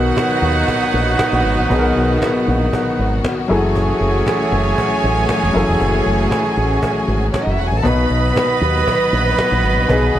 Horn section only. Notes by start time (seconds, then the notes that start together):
Already playing: F#3 D#4 B4
3.50 A3 G#4 C#5
7.85 B3 B4 D#5